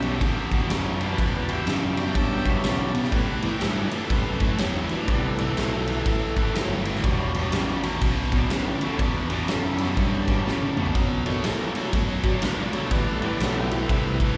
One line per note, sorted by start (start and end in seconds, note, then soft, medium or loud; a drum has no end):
0.00 0.20 B1 medium
0.00 0.19 E2 medium
0.00 0.20 B2 medium
0.00 0.19 F#3 soft
0.00 0.19 G3 soft
0.00 0.20 D4 medium
0.00 0.67 G4 medium
0.00 0.67 E5 medium
0.00 ride medium
0.21 0.68 D2 medium
0.21 0.49 E2 medium
0.21 0.49 B2 medium
0.21 kick loud
0.21 ride medium
0.52 0.68 E2 medium
0.52 0.69 B2 medium
0.52 kick medium
0.52 ride medium
0.69 0.97 E2 medium
0.69 1.17 F#2 medium
0.69 0.97 C#3 loud
0.69 snare loud
0.69 ride medium
0.98 1.17 E2 medium
0.98 1.17 B2 medium
0.98 1.02 C#5 medium
0.98 ride medium
1.03 1.18 B4 medium
1.03 1.18 D5 medium
1.18 1.46 E2 medium
1.18 1.66 E2 medium
1.18 1.46 B2 medium
1.18 1.34 B4 medium
1.18 1.35 D5 medium
1.18 kick loud
1.18 ride medium
1.37 1.51 B4 medium
1.37 1.52 D5 medium
1.48 1.65 E2 medium
1.48 1.65 B2 medium
1.48 ride medium
1.53 1.67 G4 medium
1.53 1.68 E5 medium
1.66 1.94 E2 medium
1.66 2.14 F#2 medium
1.66 1.94 C#3 medium
1.66 1.83 G4 medium
1.66 1.84 E5 medium
1.66 snare loud
1.66 ride medium
1.85 2.00 G4 medium
1.85 1.99 E5 medium
1.97 2.14 E2 medium
1.97 2.14 B2 medium
1.97 3.09 F#3 medium
1.97 3.09 G3 soft
1.97 3.09 D4 medium
1.97 2.15 E5 medium
1.97 ride medium
2.01 2.16 G5 medium
2.15 2.43 E2 medium
2.15 2.63 G2 medium
2.15 2.43 B2 medium
2.15 2.32 E5 medium
2.15 2.33 G5 medium
2.15 kick loud
2.15 ride medium
2.33 2.48 E5 medium
2.33 2.49 G5 medium
2.45 2.62 E2 medium
2.45 2.63 B2 medium
2.45 kick medium
2.45 ride medium
2.50 2.75 E5 medium
2.63 2.91 E2 medium
2.63 3.12 B2 medium
2.63 2.92 C#3 medium
2.63 snare loud
2.63 ride medium
2.94 3.11 E2 medium
2.94 3.12 B2 medium
2.94 ride medium
3.04 snare soft
3.12 3.60 A2 medium
3.12 3.41 A2 medium
3.12 3.49 C3 medium
3.12 3.41 E3 medium
3.12 3.49 G3 medium
3.12 3.50 B3 medium
3.12 kick loud
3.12 ride medium
3.42 3.60 A2 medium
3.42 3.60 E3 medium
3.42 3.62 G5 medium
3.42 ride medium
3.61 3.90 G2 medium
3.61 3.89 A2 medium
3.61 3.90 F#3 medium
3.61 3.79 E5 medium
3.61 snare loud
3.61 ride medium
3.79 3.95 D5 medium
3.91 4.09 A2 medium
3.91 4.09 E3 medium
3.91 3.96 G#4 medium
3.91 muted fingered electric bass stroke soft
3.91 ride medium
3.96 4.59 A4 medium
4.09 4.58 F#2 medium
4.09 4.38 A2 medium
4.09 4.38 C3 soft
4.09 4.39 E3 medium
4.09 4.37 G3 soft
4.09 4.38 B3 medium
4.09 kick loud
4.09 ride loud
4.40 4.58 A2 medium
4.40 4.58 E3 medium
4.40 kick medium
4.40 ride medium
4.58 4.88 E2 medium
4.58 4.87 A2 medium
4.58 4.87 F#3 medium
4.58 4.75 G4 medium
4.58 snare loud
4.58 ride medium
4.77 4.92 E4 medium
4.89 5.07 A2 medium
4.89 5.07 E3 medium
4.89 5.08 D4 medium
4.89 muted fingered electric bass stroke soft
4.89 ride medium
5.07 5.56 C2 medium
5.07 5.36 A2 medium
5.07 5.44 C3 medium
5.07 5.36 E3 medium
5.07 5.44 G3 soft
5.07 5.44 B3 medium
5.07 5.25 D4 medium
5.07 kick loud
5.07 ride medium
5.26 6.68 A3 loud
5.38 5.56 A2 medium
5.38 5.56 E3 medium
5.38 ride medium
5.57 6.05 B1 medium
5.57 5.85 A2 medium
5.57 5.85 F#3 medium
5.57 snare loud
5.57 ride medium
5.87 6.04 A2 medium
5.87 6.05 E3 medium
5.87 ride medium
6.06 6.53 A1 medium
6.06 6.34 A2 medium
6.06 6.34 E3 medium
6.06 kick loud
6.06 ride medium
6.36 6.53 A2 medium
6.36 6.54 E3 medium
6.36 kick medium
6.36 ride medium
6.55 7.02 G1 medium
6.55 6.83 A2 medium
6.55 6.83 F#3 medium
6.55 snare loud
6.55 ride medium
6.85 7.02 A2 medium
6.85 7.03 E3 medium
6.85 ride medium
6.95 snare soft
7.04 7.51 E1 medium
7.04 7.32 E2 medium
7.04 7.32 B2 medium
7.04 7.79 F#3 medium
7.04 7.80 G3 medium
7.04 7.80 D4 medium
7.04 kick loud
7.04 ride loud
7.34 7.51 E2 medium
7.34 7.52 B2 medium
7.34 ride medium
7.52 8.00 A1 loud
7.52 7.81 E2 medium
7.52 7.81 C#3 medium
7.52 snare loud
7.52 ride loud
7.83 8.00 E2 medium
7.83 8.00 B2 medium
7.83 ride medium
8.01 8.49 B1 medium
8.01 8.30 E2 medium
8.01 8.30 B2 medium
8.01 kick loud
8.01 ride loud
8.32 8.49 E2 medium
8.32 8.49 B2 medium
8.32 8.36 C#5 medium
8.32 kick medium
8.32 ride medium
8.37 8.52 D5 loud
8.50 8.79 D2 medium
8.50 8.78 E2 medium
8.50 8.78 C#3 loud
8.50 8.68 B4 medium
8.50 snare loud
8.50 ride loud
8.69 8.84 D5 medium
8.81 8.98 E2 medium
8.81 8.99 B2 medium
8.81 muted fingered electric bass stroke soft
8.81 ride medium
8.85 9.00 A4 medium
8.97 9.27 E2 medium
8.97 9.47 E2 medium
8.97 9.27 B2 medium
8.97 9.00 C#5 medium
8.97 kick loud
8.97 ride medium
9.01 9.16 D5 loud
9.17 9.32 B4 medium
9.30 9.47 E2 medium
9.30 9.47 B2 medium
9.30 9.49 D5 medium
9.30 ride medium
9.48 9.76 E2 medium
9.48 9.96 F#2 medium
9.48 9.77 C#3 loud
9.48 9.65 A4 medium
9.48 snare loud
9.48 ride medium
9.66 10.13 E4 medium
9.77 9.96 E2 medium
9.77 9.96 B2 medium
9.77 10.91 F#3 medium
9.77 10.91 G3 medium
9.77 10.92 D4 medium
9.77 ride medium
9.97 10.25 E2 medium
9.97 10.45 G2 medium
9.97 10.25 B2 medium
9.97 kick loud
9.97 ride medium
10.28 10.45 E2 medium
10.28 10.45 B2 medium
10.28 kick medium
10.28 ride medium
10.46 10.74 E2 medium
10.46 10.75 A2 medium
10.46 10.74 C#3 loud
10.46 snare medium
10.62 high tom medium
10.77 10.94 E2 medium
10.77 10.94 B2 medium
10.77 muted fingered electric bass stroke soft
10.77 mid tom medium
10.86 floor tom medium
10.95 11.23 B2 medium
10.95 11.43 B2 medium
10.95 11.23 F#3 medium
10.95 kick loud
10.95 ride medium
11.25 11.43 B2 medium
11.25 11.90 D#3 medium
11.25 11.43 F#3 medium
11.25 11.90 A3 medium
11.25 11.91 D4 medium
11.25 ride medium
11.44 11.92 A2 medium
11.44 11.73 B2 medium
11.44 11.73 G#3 medium
11.44 snare loud
11.44 ride loud
11.75 11.92 B2 medium
11.75 11.92 F#3 medium
11.75 ride medium
11.93 12.22 F#2 medium
11.93 12.21 B2 medium
11.93 12.22 F#3 medium
11.93 kick loud
11.93 ride loud
12.23 12.41 B2 medium
12.23 12.41 F#3 medium
12.23 12.28 C#5 medium
12.23 kick medium
12.23 ride medium
12.28 12.43 D5 loud
12.42 12.91 D2 medium
12.42 12.71 B2 medium
12.42 12.71 G#3 medium
12.42 12.60 B4 medium
12.42 snare loud
12.42 ride loud
12.61 12.76 D5 medium
12.73 12.90 B2 medium
12.73 12.90 F#3 medium
12.73 12.92 A4 medium
12.73 ride medium
12.89 13.39 A1 medium
12.89 13.20 A2 medium
12.89 14.37 E3 medium
12.89 13.20 E3 medium
12.89 13.89 G3 medium
12.89 13.89 B3 medium
12.89 12.92 C#5 medium
12.89 kick loud
12.89 ride medium
12.93 13.09 D5 loud
13.09 13.25 A4 medium
13.22 13.39 A2 medium
13.22 13.40 E3 medium
13.22 13.41 D5 medium
13.22 ride medium
13.40 13.88 B1 loud
13.40 13.69 A2 medium
13.40 13.69 F#3 loud
13.40 13.57 A4 medium
13.40 snare loud
13.40 ride medium
13.57 14.03 A3 medium
13.57 14.05 C4 medium
13.71 13.88 A2 medium
13.71 13.88 E3 medium
13.71 ride medium
13.89 14.37 C2 medium
13.89 14.18 A2 medium
13.89 14.17 C3 medium
13.89 14.18 E3 medium
13.89 14.17 G3 soft
13.89 14.17 B3 medium
13.89 kick loud
13.89 ride loud
14.20 14.37 A2 medium
14.20 14.37 E3 medium
14.20 kick medium
14.20 ride medium